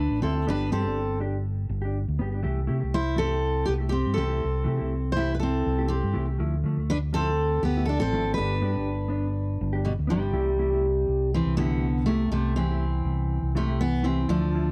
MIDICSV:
0, 0, Header, 1, 5, 480
1, 0, Start_track
1, 0, Key_signature, 0, "major"
1, 0, Tempo, 493827
1, 453, Time_signature, 4, 2, 24, 8
1, 14304, End_track
2, 0, Start_track
2, 0, Title_t, "Clean electric guitar"
2, 0, Program_c, 0, 27
2, 236, Note_on_c, 0, 64, 73
2, 331, Note_off_c, 0, 64, 0
2, 343, Note_on_c, 0, 64, 45
2, 365, Note_on_c, 0, 57, 34
2, 451, Note_off_c, 0, 57, 0
2, 453, Note_off_c, 0, 64, 0
2, 455, Note_on_c, 0, 59, 69
2, 462, Note_on_c, 0, 62, 76
2, 470, Note_on_c, 0, 67, 78
2, 607, Note_off_c, 0, 59, 0
2, 610, Note_off_c, 0, 62, 0
2, 614, Note_off_c, 0, 67, 0
2, 687, Note_on_c, 0, 59, 60
2, 711, Note_on_c, 0, 67, 68
2, 790, Note_off_c, 0, 67, 0
2, 801, Note_on_c, 0, 67, 47
2, 821, Note_off_c, 0, 59, 0
2, 829, Note_on_c, 0, 62, 40
2, 948, Note_off_c, 0, 67, 0
2, 962, Note_off_c, 0, 62, 0
2, 1168, Note_on_c, 0, 62, 53
2, 1177, Note_on_c, 0, 67, 54
2, 1324, Note_off_c, 0, 62, 0
2, 1329, Note_off_c, 0, 67, 0
2, 1766, Note_on_c, 0, 67, 47
2, 1797, Note_on_c, 0, 62, 39
2, 1911, Note_off_c, 0, 67, 0
2, 1927, Note_off_c, 0, 62, 0
2, 2129, Note_on_c, 0, 59, 69
2, 2153, Note_on_c, 0, 67, 71
2, 2240, Note_off_c, 0, 67, 0
2, 2252, Note_on_c, 0, 67, 50
2, 2263, Note_off_c, 0, 59, 0
2, 2276, Note_on_c, 0, 62, 39
2, 2357, Note_on_c, 0, 52, 77
2, 2360, Note_off_c, 0, 67, 0
2, 2360, Note_on_c, 0, 57, 78
2, 2361, Note_off_c, 0, 62, 0
2, 2365, Note_on_c, 0, 64, 86
2, 2372, Note_on_c, 0, 67, 96
2, 2519, Note_off_c, 0, 52, 0
2, 2520, Note_off_c, 0, 57, 0
2, 2523, Note_off_c, 0, 64, 0
2, 2526, Note_off_c, 0, 67, 0
2, 2596, Note_on_c, 0, 57, 74
2, 2597, Note_on_c, 0, 64, 69
2, 2611, Note_on_c, 0, 67, 77
2, 2714, Note_off_c, 0, 67, 0
2, 2725, Note_on_c, 0, 67, 50
2, 2728, Note_off_c, 0, 64, 0
2, 2737, Note_off_c, 0, 57, 0
2, 2748, Note_on_c, 0, 57, 40
2, 2871, Note_off_c, 0, 67, 0
2, 2883, Note_off_c, 0, 57, 0
2, 3070, Note_on_c, 0, 52, 46
2, 3071, Note_on_c, 0, 57, 45
2, 3087, Note_on_c, 0, 67, 53
2, 3236, Note_off_c, 0, 52, 0
2, 3236, Note_off_c, 0, 57, 0
2, 3244, Note_off_c, 0, 67, 0
2, 3678, Note_on_c, 0, 67, 47
2, 3694, Note_on_c, 0, 64, 42
2, 3706, Note_on_c, 0, 57, 40
2, 3828, Note_off_c, 0, 67, 0
2, 3836, Note_off_c, 0, 64, 0
2, 3842, Note_off_c, 0, 57, 0
2, 4043, Note_on_c, 0, 57, 60
2, 4045, Note_on_c, 0, 52, 70
2, 4056, Note_on_c, 0, 64, 64
2, 4056, Note_on_c, 0, 67, 68
2, 4149, Note_off_c, 0, 67, 0
2, 4160, Note_on_c, 0, 67, 51
2, 4166, Note_off_c, 0, 64, 0
2, 4167, Note_off_c, 0, 57, 0
2, 4177, Note_on_c, 0, 64, 46
2, 4179, Note_on_c, 0, 57, 39
2, 4182, Note_off_c, 0, 52, 0
2, 4309, Note_off_c, 0, 67, 0
2, 4318, Note_off_c, 0, 64, 0
2, 4319, Note_off_c, 0, 57, 0
2, 4511, Note_on_c, 0, 52, 61
2, 4524, Note_on_c, 0, 57, 65
2, 4531, Note_on_c, 0, 64, 70
2, 4541, Note_on_c, 0, 67, 66
2, 4628, Note_off_c, 0, 67, 0
2, 4640, Note_on_c, 0, 67, 57
2, 4643, Note_off_c, 0, 64, 0
2, 4654, Note_off_c, 0, 52, 0
2, 4654, Note_off_c, 0, 57, 0
2, 4655, Note_on_c, 0, 64, 61
2, 4665, Note_on_c, 0, 57, 46
2, 4789, Note_off_c, 0, 67, 0
2, 4796, Note_off_c, 0, 64, 0
2, 4802, Note_off_c, 0, 57, 0
2, 5009, Note_on_c, 0, 52, 46
2, 5014, Note_on_c, 0, 57, 50
2, 5023, Note_on_c, 0, 64, 49
2, 5030, Note_on_c, 0, 67, 55
2, 5165, Note_off_c, 0, 52, 0
2, 5168, Note_off_c, 0, 57, 0
2, 5172, Note_off_c, 0, 64, 0
2, 5176, Note_off_c, 0, 67, 0
2, 5624, Note_on_c, 0, 67, 52
2, 5634, Note_on_c, 0, 64, 42
2, 5642, Note_on_c, 0, 57, 41
2, 5761, Note_off_c, 0, 67, 0
2, 5766, Note_off_c, 0, 64, 0
2, 5770, Note_off_c, 0, 57, 0
2, 5961, Note_on_c, 0, 52, 63
2, 5971, Note_on_c, 0, 57, 65
2, 5979, Note_on_c, 0, 67, 70
2, 5981, Note_on_c, 0, 64, 70
2, 6082, Note_off_c, 0, 67, 0
2, 6094, Note_on_c, 0, 67, 46
2, 6099, Note_off_c, 0, 52, 0
2, 6104, Note_off_c, 0, 57, 0
2, 6109, Note_off_c, 0, 64, 0
2, 6117, Note_on_c, 0, 57, 39
2, 6205, Note_on_c, 0, 53, 82
2, 6208, Note_off_c, 0, 57, 0
2, 6210, Note_off_c, 0, 67, 0
2, 6219, Note_on_c, 0, 57, 89
2, 6221, Note_on_c, 0, 64, 95
2, 6363, Note_off_c, 0, 53, 0
2, 6370, Note_off_c, 0, 57, 0
2, 6371, Note_off_c, 0, 64, 0
2, 6451, Note_on_c, 0, 53, 65
2, 6470, Note_on_c, 0, 57, 78
2, 6584, Note_off_c, 0, 53, 0
2, 6594, Note_off_c, 0, 57, 0
2, 6606, Note_on_c, 0, 57, 48
2, 6731, Note_off_c, 0, 57, 0
2, 6928, Note_on_c, 0, 53, 59
2, 6940, Note_on_c, 0, 57, 56
2, 6949, Note_on_c, 0, 64, 58
2, 7084, Note_off_c, 0, 53, 0
2, 7090, Note_off_c, 0, 57, 0
2, 7095, Note_off_c, 0, 64, 0
2, 7553, Note_on_c, 0, 64, 50
2, 7573, Note_on_c, 0, 57, 38
2, 7685, Note_off_c, 0, 64, 0
2, 7694, Note_off_c, 0, 57, 0
2, 7897, Note_on_c, 0, 53, 68
2, 7909, Note_on_c, 0, 57, 71
2, 7923, Note_on_c, 0, 64, 80
2, 8003, Note_off_c, 0, 64, 0
2, 8014, Note_on_c, 0, 64, 50
2, 8027, Note_off_c, 0, 53, 0
2, 8032, Note_off_c, 0, 57, 0
2, 8043, Note_on_c, 0, 57, 39
2, 8129, Note_off_c, 0, 64, 0
2, 8132, Note_off_c, 0, 57, 0
2, 8136, Note_on_c, 0, 59, 71
2, 8152, Note_on_c, 0, 62, 80
2, 8154, Note_on_c, 0, 67, 83
2, 8287, Note_off_c, 0, 59, 0
2, 8296, Note_off_c, 0, 62, 0
2, 8297, Note_off_c, 0, 67, 0
2, 8370, Note_on_c, 0, 59, 60
2, 8381, Note_on_c, 0, 62, 75
2, 8388, Note_on_c, 0, 67, 66
2, 8483, Note_off_c, 0, 67, 0
2, 8494, Note_on_c, 0, 67, 51
2, 8503, Note_off_c, 0, 59, 0
2, 8508, Note_off_c, 0, 62, 0
2, 8520, Note_on_c, 0, 62, 46
2, 8635, Note_off_c, 0, 67, 0
2, 8648, Note_off_c, 0, 62, 0
2, 8829, Note_on_c, 0, 59, 54
2, 8844, Note_on_c, 0, 62, 56
2, 8994, Note_off_c, 0, 59, 0
2, 9001, Note_off_c, 0, 62, 0
2, 9456, Note_on_c, 0, 67, 62
2, 9479, Note_on_c, 0, 62, 45
2, 9595, Note_off_c, 0, 67, 0
2, 9606, Note_off_c, 0, 62, 0
2, 9791, Note_on_c, 0, 59, 68
2, 9807, Note_on_c, 0, 62, 84
2, 9921, Note_on_c, 0, 67, 53
2, 9933, Note_off_c, 0, 59, 0
2, 9935, Note_off_c, 0, 62, 0
2, 9946, Note_on_c, 0, 62, 40
2, 10034, Note_off_c, 0, 67, 0
2, 10040, Note_off_c, 0, 62, 0
2, 10042, Note_on_c, 0, 52, 70
2, 10044, Note_on_c, 0, 57, 82
2, 10044, Note_on_c, 0, 64, 80
2, 10046, Note_on_c, 0, 67, 83
2, 10199, Note_off_c, 0, 52, 0
2, 10200, Note_off_c, 0, 57, 0
2, 10201, Note_off_c, 0, 64, 0
2, 10202, Note_off_c, 0, 67, 0
2, 10269, Note_on_c, 0, 52, 54
2, 10291, Note_on_c, 0, 57, 65
2, 10294, Note_on_c, 0, 64, 66
2, 10301, Note_on_c, 0, 67, 72
2, 10407, Note_off_c, 0, 67, 0
2, 10411, Note_off_c, 0, 52, 0
2, 10416, Note_off_c, 0, 64, 0
2, 10418, Note_on_c, 0, 67, 55
2, 10422, Note_off_c, 0, 57, 0
2, 10427, Note_on_c, 0, 64, 57
2, 10441, Note_on_c, 0, 57, 49
2, 10556, Note_off_c, 0, 67, 0
2, 10560, Note_off_c, 0, 64, 0
2, 10567, Note_off_c, 0, 57, 0
2, 11247, Note_on_c, 0, 52, 62
2, 11257, Note_on_c, 0, 57, 57
2, 11264, Note_on_c, 0, 64, 60
2, 11268, Note_on_c, 0, 67, 61
2, 11377, Note_off_c, 0, 67, 0
2, 11380, Note_off_c, 0, 52, 0
2, 11385, Note_off_c, 0, 57, 0
2, 11388, Note_off_c, 0, 64, 0
2, 11388, Note_on_c, 0, 67, 46
2, 11400, Note_on_c, 0, 64, 40
2, 11417, Note_on_c, 0, 57, 44
2, 11521, Note_off_c, 0, 67, 0
2, 11526, Note_off_c, 0, 64, 0
2, 11535, Note_off_c, 0, 57, 0
2, 11741, Note_on_c, 0, 57, 70
2, 11749, Note_on_c, 0, 64, 73
2, 11750, Note_on_c, 0, 67, 68
2, 11889, Note_off_c, 0, 57, 0
2, 11893, Note_off_c, 0, 64, 0
2, 11893, Note_off_c, 0, 67, 0
2, 12219, Note_on_c, 0, 52, 64
2, 12222, Note_on_c, 0, 57, 61
2, 12236, Note_on_c, 0, 64, 62
2, 12236, Note_on_c, 0, 67, 65
2, 12337, Note_off_c, 0, 67, 0
2, 12346, Note_off_c, 0, 52, 0
2, 12347, Note_off_c, 0, 57, 0
2, 12348, Note_off_c, 0, 64, 0
2, 12348, Note_on_c, 0, 67, 54
2, 12360, Note_on_c, 0, 64, 51
2, 12371, Note_on_c, 0, 57, 44
2, 12480, Note_off_c, 0, 67, 0
2, 12486, Note_off_c, 0, 64, 0
2, 12492, Note_off_c, 0, 57, 0
2, 13172, Note_on_c, 0, 52, 65
2, 13177, Note_on_c, 0, 57, 64
2, 13180, Note_on_c, 0, 64, 61
2, 13189, Note_on_c, 0, 67, 57
2, 13278, Note_off_c, 0, 67, 0
2, 13283, Note_off_c, 0, 64, 0
2, 13290, Note_on_c, 0, 67, 54
2, 13295, Note_on_c, 0, 64, 49
2, 13297, Note_off_c, 0, 57, 0
2, 13302, Note_off_c, 0, 52, 0
2, 13309, Note_on_c, 0, 57, 36
2, 13431, Note_off_c, 0, 67, 0
2, 13434, Note_off_c, 0, 64, 0
2, 13441, Note_off_c, 0, 57, 0
2, 13635, Note_on_c, 0, 52, 60
2, 13640, Note_on_c, 0, 57, 71
2, 13650, Note_on_c, 0, 64, 72
2, 13650, Note_on_c, 0, 67, 67
2, 13796, Note_off_c, 0, 52, 0
2, 13798, Note_off_c, 0, 57, 0
2, 13803, Note_off_c, 0, 64, 0
2, 13803, Note_off_c, 0, 67, 0
2, 13882, Note_on_c, 0, 53, 66
2, 13885, Note_on_c, 0, 57, 78
2, 13890, Note_on_c, 0, 64, 78
2, 14039, Note_off_c, 0, 53, 0
2, 14041, Note_off_c, 0, 57, 0
2, 14043, Note_off_c, 0, 64, 0
2, 14117, Note_on_c, 0, 53, 66
2, 14143, Note_on_c, 0, 64, 74
2, 14237, Note_off_c, 0, 64, 0
2, 14249, Note_on_c, 0, 64, 48
2, 14255, Note_off_c, 0, 53, 0
2, 14304, Note_off_c, 0, 64, 0
2, 14304, End_track
3, 0, Start_track
3, 0, Title_t, "Steel-string acoustic guitar"
3, 0, Program_c, 1, 25
3, 0, Note_on_c, 1, 62, 69
3, 0, Note_on_c, 1, 71, 90
3, 188, Note_off_c, 1, 62, 0
3, 193, Note_off_c, 1, 71, 0
3, 213, Note_on_c, 1, 60, 51
3, 222, Note_on_c, 1, 69, 63
3, 436, Note_off_c, 1, 60, 0
3, 465, Note_off_c, 1, 69, 0
3, 471, Note_on_c, 1, 62, 73
3, 484, Note_on_c, 1, 71, 91
3, 686, Note_off_c, 1, 62, 0
3, 693, Note_off_c, 1, 71, 0
3, 699, Note_on_c, 1, 60, 61
3, 705, Note_on_c, 1, 69, 72
3, 1144, Note_off_c, 1, 60, 0
3, 1147, Note_off_c, 1, 69, 0
3, 2860, Note_on_c, 1, 72, 89
3, 2864, Note_on_c, 1, 64, 71
3, 3084, Note_off_c, 1, 64, 0
3, 3088, Note_off_c, 1, 72, 0
3, 3092, Note_on_c, 1, 69, 84
3, 3103, Note_on_c, 1, 60, 61
3, 3541, Note_off_c, 1, 69, 0
3, 3546, Note_off_c, 1, 60, 0
3, 3553, Note_on_c, 1, 67, 78
3, 3579, Note_on_c, 1, 59, 65
3, 3621, Note_off_c, 1, 67, 0
3, 3643, Note_off_c, 1, 59, 0
3, 3783, Note_on_c, 1, 67, 75
3, 3813, Note_on_c, 1, 60, 57
3, 4020, Note_on_c, 1, 69, 71
3, 4038, Note_off_c, 1, 60, 0
3, 4047, Note_off_c, 1, 67, 0
3, 4060, Note_on_c, 1, 60, 55
3, 4974, Note_off_c, 1, 69, 0
3, 4978, Note_on_c, 1, 72, 87
3, 4980, Note_off_c, 1, 60, 0
3, 5021, Note_on_c, 1, 64, 66
3, 5162, Note_off_c, 1, 72, 0
3, 5185, Note_off_c, 1, 64, 0
3, 5196, Note_on_c, 1, 71, 66
3, 5240, Note_off_c, 1, 71, 0
3, 5244, Note_on_c, 1, 69, 79
3, 5277, Note_on_c, 1, 60, 58
3, 5713, Note_off_c, 1, 60, 0
3, 5718, Note_on_c, 1, 67, 64
3, 5730, Note_on_c, 1, 60, 50
3, 5745, Note_off_c, 1, 69, 0
3, 6071, Note_off_c, 1, 67, 0
3, 6078, Note_off_c, 1, 60, 0
3, 6705, Note_on_c, 1, 71, 94
3, 6717, Note_on_c, 1, 62, 74
3, 6768, Note_off_c, 1, 71, 0
3, 6778, Note_off_c, 1, 62, 0
3, 6938, Note_on_c, 1, 69, 101
3, 6949, Note_on_c, 1, 60, 71
3, 7389, Note_off_c, 1, 60, 0
3, 7414, Note_on_c, 1, 67, 69
3, 7431, Note_off_c, 1, 69, 0
3, 7436, Note_on_c, 1, 59, 60
3, 7631, Note_off_c, 1, 67, 0
3, 7635, Note_on_c, 1, 69, 72
3, 7649, Note_off_c, 1, 59, 0
3, 7669, Note_on_c, 1, 62, 67
3, 7762, Note_off_c, 1, 69, 0
3, 7774, Note_on_c, 1, 69, 80
3, 7784, Note_off_c, 1, 62, 0
3, 7792, Note_on_c, 1, 60, 64
3, 8101, Note_off_c, 1, 69, 0
3, 8105, Note_on_c, 1, 71, 86
3, 8113, Note_off_c, 1, 60, 0
3, 8141, Note_on_c, 1, 62, 71
3, 9519, Note_off_c, 1, 71, 0
3, 9537, Note_off_c, 1, 62, 0
3, 9571, Note_on_c, 1, 47, 55
3, 9577, Note_on_c, 1, 55, 58
3, 9637, Note_off_c, 1, 47, 0
3, 9640, Note_off_c, 1, 55, 0
3, 9818, Note_on_c, 1, 55, 70
3, 9829, Note_on_c, 1, 48, 56
3, 10975, Note_off_c, 1, 55, 0
3, 10981, Note_off_c, 1, 48, 0
3, 11026, Note_on_c, 1, 60, 69
3, 11036, Note_on_c, 1, 52, 63
3, 11241, Note_off_c, 1, 60, 0
3, 11245, Note_on_c, 1, 59, 88
3, 11248, Note_off_c, 1, 52, 0
3, 11253, Note_on_c, 1, 50, 59
3, 11699, Note_off_c, 1, 50, 0
3, 11717, Note_off_c, 1, 59, 0
3, 11721, Note_on_c, 1, 57, 69
3, 11736, Note_on_c, 1, 48, 47
3, 11949, Note_off_c, 1, 57, 0
3, 11957, Note_off_c, 1, 48, 0
3, 11971, Note_on_c, 1, 57, 81
3, 11978, Note_on_c, 1, 48, 74
3, 12198, Note_off_c, 1, 48, 0
3, 12204, Note_off_c, 1, 57, 0
3, 12208, Note_on_c, 1, 60, 80
3, 12220, Note_on_c, 1, 52, 62
3, 13130, Note_off_c, 1, 60, 0
3, 13136, Note_off_c, 1, 52, 0
3, 13185, Note_on_c, 1, 48, 64
3, 13189, Note_on_c, 1, 57, 70
3, 13402, Note_off_c, 1, 57, 0
3, 13403, Note_off_c, 1, 48, 0
3, 13420, Note_on_c, 1, 59, 82
3, 13431, Note_on_c, 1, 52, 60
3, 13637, Note_off_c, 1, 52, 0
3, 13648, Note_on_c, 1, 52, 60
3, 13653, Note_on_c, 1, 60, 63
3, 13662, Note_off_c, 1, 59, 0
3, 13873, Note_off_c, 1, 52, 0
3, 13874, Note_off_c, 1, 60, 0
3, 13891, Note_on_c, 1, 53, 71
3, 13899, Note_on_c, 1, 62, 86
3, 14304, Note_off_c, 1, 53, 0
3, 14304, Note_off_c, 1, 62, 0
3, 14304, End_track
4, 0, Start_track
4, 0, Title_t, "Fingered electric bass"
4, 0, Program_c, 2, 33
4, 97, Note_on_c, 2, 33, 82
4, 199, Note_off_c, 2, 33, 0
4, 211, Note_on_c, 2, 38, 72
4, 431, Note_off_c, 2, 38, 0
4, 460, Note_on_c, 2, 31, 86
4, 676, Note_off_c, 2, 31, 0
4, 705, Note_on_c, 2, 43, 91
4, 819, Note_off_c, 2, 43, 0
4, 825, Note_on_c, 2, 31, 76
4, 1616, Note_off_c, 2, 31, 0
4, 1646, Note_on_c, 2, 31, 90
4, 1988, Note_off_c, 2, 31, 0
4, 2024, Note_on_c, 2, 38, 76
4, 2125, Note_off_c, 2, 38, 0
4, 2145, Note_on_c, 2, 31, 81
4, 2359, Note_off_c, 2, 31, 0
4, 2377, Note_on_c, 2, 36, 81
4, 2595, Note_off_c, 2, 36, 0
4, 2624, Note_on_c, 2, 48, 90
4, 2739, Note_off_c, 2, 48, 0
4, 2753, Note_on_c, 2, 36, 73
4, 3541, Note_off_c, 2, 36, 0
4, 3579, Note_on_c, 2, 36, 84
4, 3916, Note_off_c, 2, 36, 0
4, 3951, Note_on_c, 2, 43, 69
4, 4049, Note_off_c, 2, 43, 0
4, 4059, Note_on_c, 2, 36, 89
4, 4276, Note_off_c, 2, 36, 0
4, 4318, Note_on_c, 2, 36, 82
4, 4527, Note_off_c, 2, 36, 0
4, 4540, Note_on_c, 2, 48, 97
4, 4657, Note_off_c, 2, 48, 0
4, 4670, Note_on_c, 2, 36, 77
4, 5459, Note_off_c, 2, 36, 0
4, 5504, Note_on_c, 2, 36, 84
4, 5838, Note_off_c, 2, 36, 0
4, 5866, Note_on_c, 2, 43, 86
4, 5966, Note_off_c, 2, 43, 0
4, 5979, Note_on_c, 2, 36, 84
4, 6197, Note_off_c, 2, 36, 0
4, 6219, Note_on_c, 2, 38, 85
4, 6436, Note_off_c, 2, 38, 0
4, 6450, Note_on_c, 2, 50, 96
4, 6572, Note_off_c, 2, 50, 0
4, 6583, Note_on_c, 2, 38, 78
4, 7374, Note_off_c, 2, 38, 0
4, 7412, Note_on_c, 2, 38, 82
4, 7751, Note_off_c, 2, 38, 0
4, 7790, Note_on_c, 2, 33, 77
4, 7887, Note_off_c, 2, 33, 0
4, 7895, Note_on_c, 2, 32, 86
4, 8113, Note_off_c, 2, 32, 0
4, 8148, Note_on_c, 2, 31, 98
4, 8360, Note_off_c, 2, 31, 0
4, 8376, Note_on_c, 2, 43, 88
4, 8494, Note_off_c, 2, 43, 0
4, 8512, Note_on_c, 2, 31, 73
4, 9298, Note_off_c, 2, 31, 0
4, 9339, Note_on_c, 2, 31, 98
4, 9674, Note_off_c, 2, 31, 0
4, 9709, Note_on_c, 2, 38, 82
4, 9804, Note_off_c, 2, 38, 0
4, 9810, Note_on_c, 2, 31, 83
4, 10029, Note_off_c, 2, 31, 0
4, 10043, Note_on_c, 2, 36, 95
4, 10728, Note_off_c, 2, 36, 0
4, 10771, Note_on_c, 2, 36, 76
4, 11109, Note_off_c, 2, 36, 0
4, 11134, Note_on_c, 2, 36, 83
4, 11928, Note_off_c, 2, 36, 0
4, 11967, Note_on_c, 2, 36, 84
4, 12650, Note_off_c, 2, 36, 0
4, 12683, Note_on_c, 2, 36, 91
4, 13024, Note_off_c, 2, 36, 0
4, 13048, Note_on_c, 2, 36, 76
4, 13845, Note_off_c, 2, 36, 0
4, 13887, Note_on_c, 2, 38, 93
4, 14304, Note_off_c, 2, 38, 0
4, 14304, End_track
5, 0, Start_track
5, 0, Title_t, "Muted clean electric guitar strokes"
5, 222, Note_on_c, 9, 29, 65
5, 319, Note_off_c, 9, 29, 0
5, 2137, Note_on_c, 9, 29, 72
5, 2234, Note_off_c, 9, 29, 0
5, 2740, Note_on_c, 9, 29, 51
5, 2837, Note_off_c, 9, 29, 0
5, 3081, Note_on_c, 9, 29, 50
5, 3178, Note_off_c, 9, 29, 0
5, 11733, Note_on_c, 9, 29, 71
5, 11831, Note_off_c, 9, 29, 0
5, 14304, End_track
0, 0, End_of_file